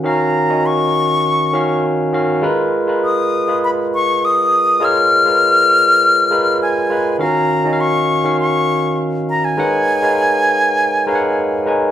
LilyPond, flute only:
\new Staff \with { instrumentName = "Flute" } { \time 4/4 \key gis \dorian \tempo 4 = 101 ais''4 cis'''2 r4 | r4 dis'''4 b''8 cis'''8 dis'''4 | eis'''2. gis''4 | ais''4 cis'''4 cis'''4 r8 ais''16 gis''16~ |
gis''2.~ gis''8 r8 | }